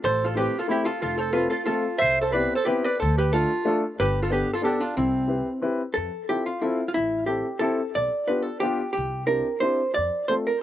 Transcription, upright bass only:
0.04 0.46 A1 loud
1.02 1.45 F1 medium
2.02 2.45 C2 medium
3.02 3.44 D2 loud
4.00 4.42 G1 loud
4.97 5.40 C2 loud
5.97 6.08 F2 medium
6.97 7.40 A1 medium
7.96 8.07 B1 medium
8.97 9.40 C2 medium
9.98 10.09 F2 medium

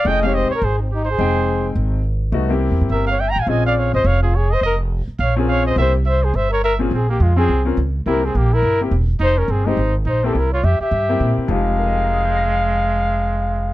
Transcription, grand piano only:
0.04 0.20 A3 medium
0.04 0.21 C#4 soft
0.04 0.21 E4 soft
0.04 0.21 G#4 medium
0.23 0.47 G#3 medium
0.23 0.48 C4 medium
0.23 0.48 D#4 soft
0.23 0.48 G4 medium
1.18 1.98 G#3 medium
1.18 1.98 C4 medium
1.18 1.98 D#4 medium
1.18 1.99 G5 medium
2.32 2.48 A3 medium
2.32 2.48 B3 medium
2.32 2.49 D#4 medium
2.32 2.49 F#4 medium
2.49 3.11 A#3 medium
2.49 3.12 C4 medium
2.49 3.12 E4 medium
2.49 3.12 G4 medium
3.47 4.26 C4 medium
3.47 4.26 C#4 soft
3.47 4.27 F4 soft
3.47 4.27 G#4 medium
5.36 5.74 C4 medium
5.36 5.74 C#4 medium
5.36 5.74 F4 medium
5.36 5.75 G#4 medium
5.77 5.92 A#3 soft
5.77 5.93 C4 soft
5.77 5.93 E4 soft
5.77 5.93 G4 medium
6.79 6.89 A#2 medium
6.79 6.90 C4 medium
6.79 6.90 C#4 medium
6.79 6.90 F4 medium
6.79 6.91 G#4 medium
7.36 7.47 C4 medium
7.36 7.47 C#4 medium
7.36 7.47 F4 medium
7.36 7.48 G#4 medium
7.65 7.76 C4 medium
7.65 7.76 C#4 medium
7.65 7.76 F4 soft
7.65 7.76 A#4 medium
8.06 8.21 A#3 medium
8.06 8.22 C4 medium
8.06 8.22 E4 soft
8.06 8.22 G4 medium
8.81 8.91 A#3 medium
8.81 8.91 C4 soft
8.81 8.91 E4 soft
8.81 8.91 G4 medium
9.66 9.76 G#3 medium
9.66 9.76 C4 medium
9.66 9.77 D#4 medium
9.66 9.77 G4 medium
10.24 10.34 A#3 medium
10.24 10.34 C4 medium
10.24 10.34 E4 medium
10.24 10.35 G4 medium
11.09 11.47 A#3 medium
11.09 11.47 C4 medium
11.09 11.47 E4 medium
11.09 11.48 G4 medium
11.48 13.73 F2 medium
11.48 13.73 F3 medium
11.48 13.73 G#3 medium
11.48 13.73 D#4 medium
11.48 13.73 G4 medium
11.79 13.73 A#4 soft
11.86 13.73 D#5 soft
11.95 13.73 G5 soft
12.04 13.73 A#5 soft
12.13 13.73 D#6 soft
12.25 13.73 G6 soft
12.37 13.73 A#6 soft

